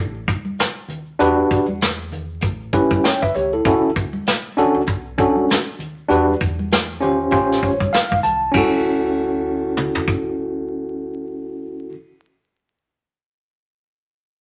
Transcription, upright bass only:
Already playing: A1
1.20 E2
1.51 E2
2.43 A1
3.34 C#2
3.65 D2
4.75 C#2
4.87 B1
6.10 E2
6.41 E2
7.32 A1
8.24 C2
8.54 D2

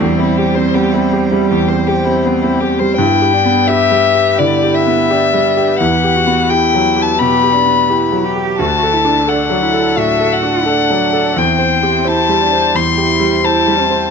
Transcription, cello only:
0.02 G3
2.98 E4
3.33 D4
3.69 G4
4.39 E4
5.11 D4
5.81 E4
6.16 F#4
6.51 E4
7.20 G4
7.53 D4
7.88 E4
8.24 G4
8.59 F#4
8.93 E4
9.27 D4
9.61 E4
9.96 F#4
10.67 D4
11.37 C4
12.06 E4
12.40 D4
12.76 E4
13.44 E4
13.80 C4

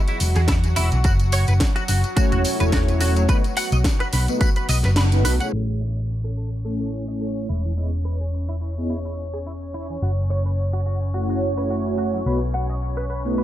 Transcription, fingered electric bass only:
0.21 E1
0.36 E2
0.77 E1
0.92 B1
1.05 F#1
1.48 F#1
1.89 F#1
2.17 muted fingered electric bass stroke
2.33 E1
2.61 E1
3.72 B1
4.13 B1
4.69 B1
4.84 F#1
5.25 B1
5.53 A1
7.50 E1
10.02 F#1
12.26 B1

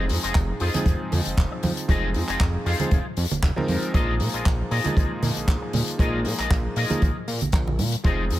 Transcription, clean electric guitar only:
0.23 F4 G#4 C5 D#5
0.49 muted clean electric guitar stroke
0.61 F4 G#4 C5 D#5
1.38 muted clean electric guitar stroke
1.52 muted clean electric guitar stroke
1.63 muted clean electric guitar stroke
1.89 F4 G#4 C5 D#5
2.28 F4 G#4 C5 D#5
2.54 muted clean electric guitar stroke
2.66 F4 G#4 C5 F5
3.43 muted clean electric guitar stroke
3.57 muted clean electric guitar stroke
3.68 muted clean electric guitar stroke
3.94 F4 G#4 A#4 D#5
4.33 F4 G#4 A#4 D#5
4.59 muted clean electric guitar stroke
4.71 F4 G#4 A#4 D#5
5.48 muted clean electric guitar stroke
5.62 muted clean electric guitar stroke
5.74 muted clean electric guitar stroke
5.99 F4 G#4 A#4 D#5
6.39 F4 G#4 A#4 D#5
6.65 muted clean electric guitar stroke
6.77 F4 G#4 A#4 D#5
7.53 muted clean electric guitar stroke
7.67 muted clean electric guitar stroke
7.79 muted clean electric guitar stroke
8.04 F4 G#4 C5 D#5

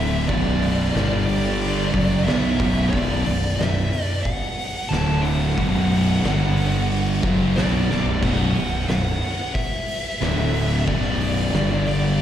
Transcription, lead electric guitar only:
Already playing: E5
0.28 D5
1.26 D5
2.24 E5
2.90 D5
3.56 E5
4.04 D5
4.23 F#5
4.89 A5
5.22 F#5
7.57 D5
8.24 F#5
8.89 F#5
9.54 E5
10.89 D5
11.88 D5

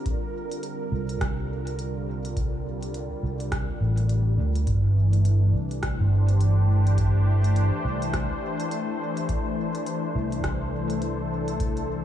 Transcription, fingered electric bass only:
0.92 C2
1.21 C2
3.23 C2
3.81 A1
4.38 D2
4.67 G1
5.53 C2
5.99 G1
7.85 C2
10.15 C2
10.44 C2

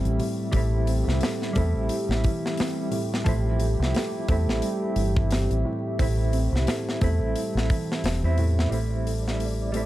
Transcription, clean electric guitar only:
Already playing: G3 C4 E4
0.52 G3 C4
0.57 E4
1.53 G3 C4
1.58 E4
3.24 F3 C4
3.29 E4
4.29 C4 E4
5.99 C4 E4
7.01 C4 E4
8.24 C4 E4
8.69 G3 C4
8.74 E4
9.72 G3 C4
9.77 E4

